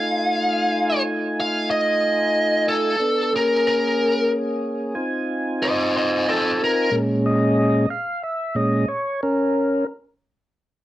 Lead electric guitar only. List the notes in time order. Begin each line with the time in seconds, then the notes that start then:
Already playing: F5
1.40 F5
1.71 D#5
2.69 A4
3.36 A#4
3.68 A#4
5.63 C5 D#5
5.97 C5 D#5
6.29 C4 A4
6.64 A#4